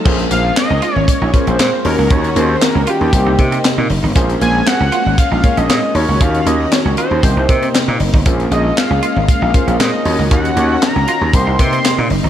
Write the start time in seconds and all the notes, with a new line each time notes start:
0.05 A#1 G#3 A#3 C#4 F4 G#4 C5, kick, crash
0.19 closed hi-hat
0.31 A#1 A#3 C#4 F4 G#4 C5 F5, closed hi-hat
0.45 muted clean electric guitar stroke
0.56 D#5, muted clean electric guitar stroke, snare, clap, closed hi-hat
0.70 C#2 C#4
0.82 F4, closed hi-hat
0.96 G#1 C#5
1.08 C#5, kick, closed hi-hat
1.22 A#1 D#4
1.33 A#3 C#4 F4 G#4 C5, muted clean electric guitar stroke, kick, closed hi-hat
1.47 A#1 C#4 C5, closed hi-hat
1.59 A#2 G#3, snare, clap, closed hi-hat
1.73 muted clean electric guitar stroke
1.85 D#2 D#3 A#3 C#4 D#4 F#4 A#4 C#5, open hi-hat
1.98 C#2 A#3
2.10 D#2 C#4 C#5, kick, closed hi-hat
2.24 closed hi-hat
2.36 D#2 A#3 C#4 D#4 F#4 G#4 C5, closed hi-hat
2.50 muted clean electric guitar stroke
2.61 A#4, muted clean electric guitar stroke, snare, clap, closed hi-hat
2.75 C#2 C#4
2.87 F4 G4, closed hi-hat
3.01 D#2
3.13 C2 C3 A#3 C4 D#4 G4 C5, kick, closed hi-hat
3.27 C2 D#4
3.38 C3 A#3 C4 D#4 G4 C5, muted clean electric guitar stroke, kick, closed hi-hat
3.52 C4, closed hi-hat
3.64 snare, clap, closed hi-hat
3.78 A#2 D#4
3.90 F#1, muted clean electric guitar stroke, open hi-hat
4.03 G1 D#4
4.15 A#1 G#3 A#3 C#4 F4 G#4 C5, kick, closed hi-hat
4.29 closed hi-hat
4.41 A#1 F3 A#3 C#4 G#4 C5 G#5, closed hi-hat
4.55 muted clean electric guitar stroke
4.67 F#5, muted clean electric guitar stroke, snare, clap, closed hi-hat
4.80 C#2 C#4
4.92 F4, closed hi-hat
5.06 G#1
5.18 F5, kick, closed hi-hat
5.32 A#1 D#4
5.43 A#3 C#4 F4 G#4 C#5, muted clean electric guitar stroke, kick, closed hi-hat
5.57 A#1 C#4 D#5, closed hi-hat
5.69 A#2 G#3, snare, clap, closed hi-hat
5.83 muted clean electric guitar stroke
5.95 D#2 D#3 A#3 C#4 D#4 F#4 C#5, open hi-hat
6.09 C#2 A#3
6.21 D#2 C#4 F5, kick, closed hi-hat
6.35 closed hi-hat
6.46 D#2 A#3 C#4 D#4 F#4 D#5, closed hi-hat
6.60 muted clean electric guitar stroke
6.72 C#5, muted clean electric guitar stroke, snare, clap, closed hi-hat
6.85 C#2 C#4
6.97 F4 C5, closed hi-hat
7.11 D#2
7.23 C2 C3 A#3 C4 D#4 G4 C5, kick, closed hi-hat
7.37 C2 D#4
7.49 C3 A#3 C4 D#4 G4 C5, muted clean electric guitar stroke, kick, closed hi-hat
7.63 C4, closed hi-hat
7.74 snare, clap, closed hi-hat
7.88 A#2 D#4
8.00 F#1, muted clean electric guitar stroke, open hi-hat
8.14 G1 D#4, kick
8.26 A#1 G#3 A#3 C#4 F4 G#4 C5, kick, closed hi-hat
8.40 closed hi-hat
8.51 A#1 A#3 C#4 F4 G#4 D#5, closed hi-hat
8.65 muted clean electric guitar stroke
8.77 F5, muted clean electric guitar stroke, snare, clap, closed hi-hat
8.90 C#2 C#4
9.03 F4, closed hi-hat
9.16 G#1
9.28 F5, kick, closed hi-hat
9.42 A#1 D#4
9.54 A#3 C#4 F4 G#4 C5, muted clean electric guitar stroke, kick, closed hi-hat
9.67 A#1 C#4, closed hi-hat
9.80 A#2 G#3 D#5, snare, clap, closed hi-hat
9.94 muted clean electric guitar stroke
10.05 D#2 D#3 A#3 C#4 D#4 F#4 C#5, open hi-hat
10.19 C#2 A#3
10.31 D#2 C#4 F#5, kick, closed hi-hat
10.45 closed hi-hat
10.56 D#2 A#3 C#4 D#4 F#4 C#5, closed hi-hat
10.70 muted clean electric guitar stroke
10.82 A#5, muted clean electric guitar stroke, snare, clap, closed hi-hat
10.96 C#2 C#4
11.08 F4, closed hi-hat
11.21 D#2
11.33 C2 C3 A#3 C4 D#4 G4 C5 C6, kick, closed hi-hat
11.47 C2 D#4
11.59 C3 A#3 C4 D#4 G4 B4 C6, muted clean electric guitar stroke, kick, closed hi-hat
11.66 C5
11.73 C4, closed hi-hat
11.85 snare, clap, closed hi-hat
11.98 A#2 D#4
12.10 F#1, muted clean electric guitar stroke, open hi-hat
12.24 G1 D#4